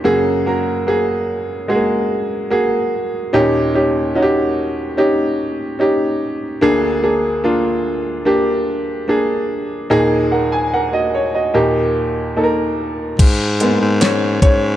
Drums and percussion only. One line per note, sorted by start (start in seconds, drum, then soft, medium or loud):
13.19 kick medium
13.19 closed hi-hat loud
13.19 crash medium
13.60 closed hi-hat medium
14.01 snare medium
14.01 closed hi-hat medium
14.42 kick medium
14.42 closed hi-hat medium